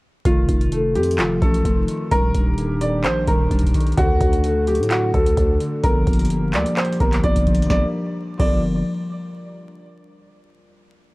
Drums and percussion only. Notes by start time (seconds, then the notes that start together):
0.25 kick, closed hi-hat
0.49 kick, closed hi-hat
0.61 closed hi-hat
0.72 closed hi-hat
0.95 closed hi-hat
1.03 closed hi-hat
1.11 closed hi-hat
1.18 clap, closed hi-hat
1.42 kick, closed hi-hat
1.54 closed hi-hat
1.65 kick, closed hi-hat
1.88 closed hi-hat
2.12 kick, closed hi-hat
2.35 kick, closed hi-hat
2.58 closed hi-hat
2.81 closed hi-hat
3.04 clap, closed hi-hat
3.28 kick, closed hi-hat
3.51 kick, closed hi-hat
3.59 closed hi-hat
3.63 kick, closed hi-hat
3.74 kick, closed hi-hat, open hi-hat
3.80 closed hi-hat
3.87 closed hi-hat
3.92 closed hi-hat
3.98 kick, closed hi-hat
4.21 kick, closed hi-hat
4.33 closed hi-hat
4.44 closed hi-hat
4.67 closed hi-hat
4.75 closed hi-hat
4.83 closed hi-hat
4.90 clap, closed hi-hat
5.14 kick, closed hi-hat
5.26 closed hi-hat
5.37 kick, closed hi-hat
5.60 closed hi-hat
5.83 kick, closed hi-hat
6.07 kick, closed hi-hat
6.13 closed hi-hat
6.19 closed hi-hat
6.25 closed hi-hat
6.30 closed hi-hat
6.53 clap, closed hi-hat
6.66 closed hi-hat
6.76 clap, closed hi-hat
6.84 closed hi-hat
6.92 closed hi-hat
7.00 kick, closed hi-hat
7.12 clap, closed hi-hat
7.23 kick, closed hi-hat
7.35 kick, closed hi-hat
7.46 kick, closed hi-hat, open hi-hat
7.54 closed hi-hat
7.62 closed hi-hat
7.70 kick, snare
8.39 kick, crash